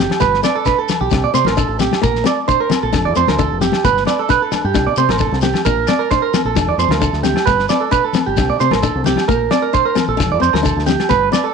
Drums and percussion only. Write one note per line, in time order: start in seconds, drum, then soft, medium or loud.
0.00 snare medium
0.10 snare medium
0.10 high conga medium
0.10 low agogo medium
0.20 kick loud
0.20 snare soft
0.20 shekere loud
0.34 snare soft
0.44 snare medium
0.44 low agogo medium
0.44 shekere medium
0.65 kick medium
0.65 snare soft
0.65 shekere loud
0.88 snare medium
0.88 low conga medium
0.88 low agogo medium
0.88 shekere medium
1.11 kick loud
1.11 snare medium
1.11 high conga medium
1.11 low agogo medium
1.11 shekere loud
1.35 shekere medium
1.45 snare medium
1.45 high conga medium
1.45 low conga medium
1.45 low agogo medium
1.57 kick medium
1.57 shekere loud
1.79 snare medium
1.79 low conga medium
1.79 shekere medium
1.91 snare medium
1.91 high conga medium
1.91 low agogo medium
2.03 kick loud
2.03 snare soft
2.03 shekere loud
2.15 snare soft
2.25 snare medium
2.25 low agogo medium
2.25 shekere medium
2.49 kick medium
2.49 shekere loud
2.70 snare medium
2.70 low conga medium
2.70 low agogo medium
2.70 shekere medium
2.93 kick loud
2.93 snare medium
2.93 high conga medium
2.93 low agogo medium
2.93 shekere medium
3.16 shekere medium
3.28 snare medium
3.28 high conga medium
3.28 low conga medium
3.28 low agogo medium
3.38 kick loud
3.38 shekere medium
3.61 snare medium
3.61 high conga medium
3.61 low conga medium
3.61 shekere medium
3.72 snare medium
3.72 high conga medium
3.72 low agogo medium
3.84 kick loud
3.84 snare soft
3.84 shekere medium
3.97 snare soft
4.05 snare medium
4.05 high conga medium
4.05 low agogo medium
4.05 shekere medium
4.29 kick medium
4.29 snare soft
4.29 shekere medium
4.52 snare medium
4.52 low conga medium
4.52 low agogo medium
4.52 shekere medium
4.74 kick medium
4.74 snare medium
4.74 high conga medium
4.74 low agogo medium
4.74 shekere medium
4.96 shekere medium
5.09 snare medium
5.09 high conga medium
5.09 low conga medium
5.09 low agogo medium
5.18 kick loud
5.18 high conga medium
5.18 shekere medium
5.32 snare soft
5.32 high conga medium
5.41 snare medium
5.41 low conga medium
5.41 shekere medium
5.54 snare medium
5.54 low conga medium
5.54 low agogo medium
5.65 kick loud
5.65 shekere loud
5.87 snare medium
5.87 low agogo medium
5.87 shekere medium
6.11 kick medium
6.11 snare soft
6.11 shekere medium
6.34 snare medium
6.34 low conga medium
6.34 low agogo medium
6.34 shekere medium
6.55 kick loud
6.55 snare medium
6.55 high conga medium
6.55 low agogo medium
6.55 shekere loud
6.79 shekere medium
6.89 snare medium
6.89 high conga medium
6.89 low conga medium
6.89 low agogo medium
7.02 kick medium
7.02 shekere loud
7.14 snare soft
7.24 snare medium
7.24 high conga medium
7.24 low conga medium
7.24 shekere medium
7.34 snare medium
7.34 high conga medium
7.34 low agogo medium
7.47 kick loud
7.47 snare soft
7.47 shekere loud
7.59 snare soft
7.69 snare medium
7.69 low agogo medium
7.69 shekere medium
7.92 kick medium
7.92 shekere medium
8.13 snare medium
8.13 low conga medium
8.13 low agogo medium
8.13 shekere medium
8.37 kick loud
8.37 snare medium
8.37 high conga medium
8.37 low agogo medium
8.37 shekere medium
8.60 shekere medium
8.71 snare medium
8.71 high conga medium
8.71 low conga medium
8.71 low agogo medium
8.83 kick loud
8.83 shekere medium
9.04 snare medium
9.04 high conga medium
9.04 low conga medium
9.04 shekere medium
9.16 snare medium
9.16 high conga medium
9.16 low agogo medium
9.29 kick loud
9.29 shekere medium
9.51 snare medium
9.51 low agogo medium
9.51 shekere medium
9.74 kick medium
9.74 shekere medium
9.96 snare medium
9.96 low conga medium
9.96 low agogo medium
9.96 shekere medium
10.19 kick loud
10.19 snare medium
10.19 high conga medium
10.19 low agogo medium
10.19 shekere medium
10.43 shekere medium
10.53 snare medium
10.53 high conga medium
10.53 low conga medium
10.53 low agogo medium
10.65 kick medium
10.65 shekere loud
10.79 snare soft
10.87 snare medium
10.87 high conga medium
10.87 low conga medium
10.87 shekere medium
11.00 snare medium
11.00 high conga medium
11.00 low agogo medium
11.10 kick loud
11.10 snare soft
11.10 shekere loud
11.33 snare medium
11.33 high conga medium
11.33 low agogo medium
11.33 shekere medium